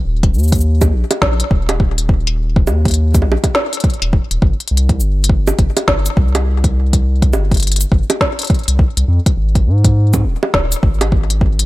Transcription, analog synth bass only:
X:1
M:4/4
L:1/16
Q:"Swing 16ths" 1/4=103
K:Cm
V:1 name="Analog synth bass" clef=bass
E,,,2 E,,4 B,,, z B,,, z E,,,6- | E,,,2 E,,4 B,,, z4 E,,, z E,,, G,,, z | C,,2 G,,,3 z G,,, z G,,, z C,,6- | C,,2 G,,,3 z G,,, z4 C,, z C,, F,, z |
A,,,2 A,,4 E,,, z E,,, z A,,,6 |]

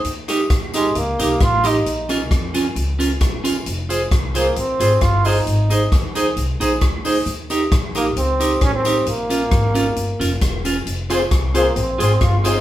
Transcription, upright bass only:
X:1
M:4/4
L:1/8
Q:"Swing" 1/4=133
K:Fm
V:1 name="Upright bass" clef=bass
E,,2 B,,,2 D,, C,, =A,,,2 | B,,,2 F,,2 D,,2 =E,,,2 | F,,,2 C,,2 B,,, A,,, G,,,2 | A,,,2 E,,2 C,, B,,, =D,,2 |
E,,2 B,,,2 D,,2 =A,,,2 | B,,,2 A,,,2 G,,, F,,, =E,,,2 | F,,,2 C,,2 B,,, A,,, G,,,2 |]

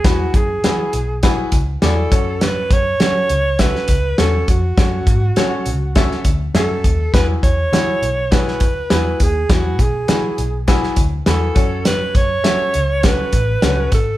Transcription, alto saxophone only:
X:1
M:4/4
L:1/8
Q:1/4=102
K:F#m
V:1 name="Alto saxophone"
F G3 z2 A2 | B c3 B2 A F- | F4- F z A2 | B c3 B2 B G |
F G3 z2 A2 | B c3 B3 A |]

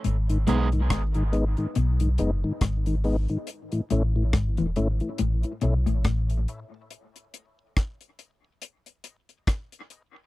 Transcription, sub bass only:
X:1
M:4/4
L:1/16
Q:"Swing 16ths" 1/4=70
K:G#phr
V:1 name="Sub bass" clef=bass
G,,,2 B,,,2 G,,,3 z B,,,2 F,,, z G,,,3 z | z2 A,,,2 G,,, E,,, G,,, z A,,, z B,,, A,,, A,,,2 z2 | z16 |]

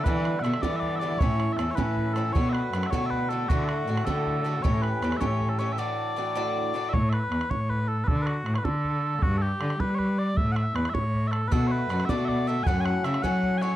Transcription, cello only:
X:1
M:6/8
L:1/8
Q:3/8=105
K:Amix
V:1 name="Cello" clef=bass
E,2 B,, E,3 | A,,2 E,, A,,3 | B,,2 F,, B,,3 | D,2 A,, D,3 |
A,,2 E,, A,,3 | z6 | A,,2 E,, A,,3 | D,2 A,, D,3 |
G,,2 D, G,3 | A,,2 E,, A,,3 | B,,2 F,, B,,3 | F,,2 C, F,3 |]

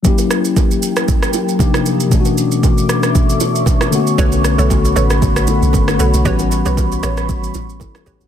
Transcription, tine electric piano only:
X:1
M:4/4
L:1/16
Q:"Swing 16ths" 1/4=116
K:F#phr
V:1 name="Tine electric piano"
z16 | z16 | z16 | z12 [EA]2 [CG] [CF] |]
V:2 name="Tine electric piano"
[F,^A,CEG]12 [=C,=F,_B,D_EG]4 | [B,,E,A,CDEF]12- [B,,E,A,CDEF]2 [D,A,^A,B,CF]2- | [D,A,^A,B,CF]8- [D,=A,^A,B,CF]2 [D,=A,B,CA]6 | [E,G,B,CF]16 |]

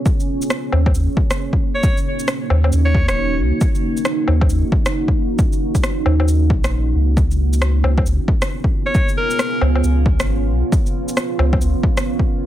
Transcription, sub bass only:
X:1
M:4/4
L:1/16
Q:"Swing 16ths" 1/4=135
K:Ebm
V:1 name="Sub bass" clef=bass
z6 E,,2 E,, z6 z | z6 E,,2 E,,3 E,,,3 D,, z | z6 E,,2 E,, z6 z | z6 E,,4 B,,,4 D,,2- |
D,,6 D,,2 D,, z6 z | z6 D,,2 D,,3 A,,,3 C,, z | z6 D,,2 D,, z6 z |]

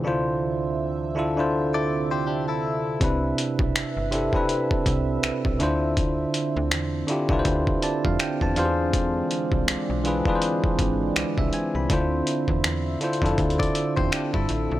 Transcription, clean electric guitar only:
X:1
M:4/4
L:1/16
Q:"Swing 16ths" 1/4=81
K:Ddor
V:1 name="Clean electric guitar"
z8 z [Ad]2 [Gc] [DG] [EA]3 | z16 | z16 | z16 |
z8 z [Ad]2 [Gc] [DG] [EA]3 |]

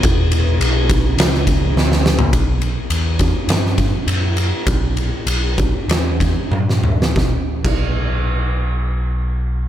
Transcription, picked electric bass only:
X:1
M:4/4
L:1/16
Q:1/4=100
K:Bm
V:1 name="Picked electric bass" clef=bass
E,,,4 B,,,4 C,,4 D,,4 | B,,,4 E,,4 G,,4 F,,4 | B,,,4 B,,,4 E,,4 G,,4 | B,,, z2 B,,,12- B,,, |]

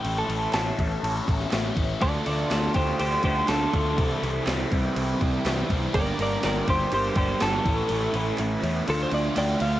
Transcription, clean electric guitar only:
X:1
M:4/4
L:1/16
Q:1/4=122
K:Dm
V:1 name="Clean electric guitar"
g A3 a8 z4 | [Ad]2 [Ad]2 [Ad]2 [Gc]2 [Gc]2 [Gc]2 A4- | A4 z12 | [Bd]2 [Bd]2 [Bd]2 [Gc]2 [Gc]2 [Gc]2 A4- |
A4 z4 A c d2 [dg]2 f2 |]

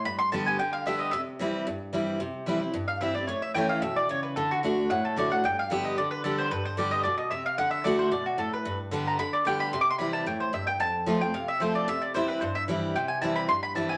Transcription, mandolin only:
X:1
M:4/4
L:1/8
Q:1/4=224
K:C
V:1 name="Mandolin"
b c' a _a g f e _e | e z6 z | z4 z f e d | ^c e g f e d c B |
A ^F z2 ^f A d f | g f e _e d B A c | B c d _e d e =e f | ^f e d c d ^F A B- |
B z2 _b =b d g b | (3c' d' c' b a g c e g | a3 g f e c d | e d c B c e z2 |
g _a =a b c' b a _a |]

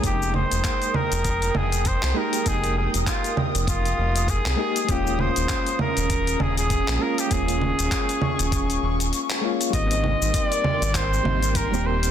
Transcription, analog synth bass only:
X:1
M:4/4
L:1/16
Q:"Swing 16ths" 1/4=99
K:Ebmix
V:1 name="Analog synth bass" clef=bass
F,,,3 F,,, z3 F,,,3 F,,,3 C,, z2 | F,,,3 F,,, z3 F,,,3 F,,,3 C,, z2 | E,,,3 E,,, z3 E,,,3 E,,,3 B,,, z2 | E,,,3 E,,, z3 E,,,3 E,,,2 z4 |
[K:Ablyd] A,,,3 A,,, z3 A,,,3 A,,,3 E,,,3 |]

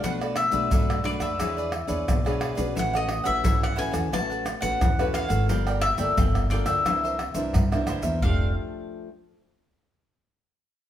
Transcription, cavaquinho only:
X:1
M:4/4
L:1/16
Q:1/4=88
K:Aphr
V:1 name="Cavaquinho"
[DA=Bd] [ABd] z [ABd] [DABd]2 [DABd] [ABd] [E^GBd] [GBd] z [GBd]2 [GBd] [EGBd] [GBd] | [EA^c^f] [Acf] z [Acf] [EAcf]2 [EAcf] [Acf] [EAcf] [Acf] z [Acf]2 [Acf] [EAcf] [Acf] | [FBdg] [Bdg] z [Bdg] [FBdg]2 [FBdg] [Bdg] [EBce] [Bce] z [Bce]2 [Bce] [EBce] [Bce] | [DAdf]2 z12 z2 |]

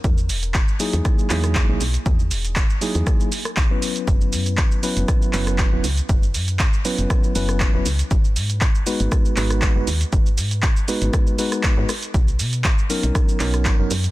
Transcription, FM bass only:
X:1
M:4/4
L:1/16
Q:"Swing 16ths" 1/4=119
K:G#m
V:1 name="FM bass" clef=bass
E,,2 E,,,2 z3 E,, z2 E,,2 z B,,, B,,, z | E,,2 E,,,2 z3 E,, z4 B,,, z3 | F,,,2 F,,2 z3 F,,, z2 F,,,2 z E,,, C,, z | F,,,2 F,,2 z3 F,,, z2 F,,,2 z E,,, C,, z |
G,,,2 G,,2 z3 G,,, z2 G,,,2 z F,,, D,, z | G,,,2 G,,2 z3 G,,, z4 z G,, z2 | B,,,2 B,,2 z3 B,,, z2 B,,,2 z F,,, F,, z |]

